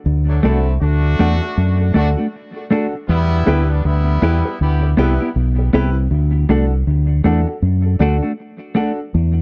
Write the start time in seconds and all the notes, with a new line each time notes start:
0.06 D2
0.27 F#3 A3 D4
0.43 C2 A3 C4 D4 E4 F#4 A4
0.80 D2 A3 D4 F#4
1.19 E2 A3 D4 F#4 A4
1.41 F#4 A4, muted clean electric guitar stroke
1.57 F#2
1.80 F#4 A4
1.94 D2 A3 D4 F#4 A4
2.17 A3 D4 F#4
2.56 F#4 A4
2.71 A3 D4 F#4 A4
2.93 muted clean electric guitar stroke
3.08 E2 G3 B3 E4
3.46 D2 B3 E4 G4 B4
3.68 G3 B3 D4
3.84 D2 G3 B3 E4
4.22 E2 B3 E4 G4 B4
4.45 G4 B4, muted clean electric guitar stroke
4.60 D2 B3 E4 G4
4.82 G4 B4
4.97 C2 G3 B3 E4 G4 B4
5.20 B3 E4 G4
5.36 B1
5.58 G4 B4
5.73 C2 B3 E4 G4 B4
6.11 D2
6.49 C2 A3 D4 F#4 A4
6.87 D2
7.24 E2 A3 D4 F#4 A4
7.47 F#4 A4, muted clean electric guitar stroke
7.62 F#2
7.85 F#4 A4
7.99 D2 A3 D4 F#4 A4
8.23 A3 D4 F#4
8.75 A3 D4 F#4 A4
9.14 E2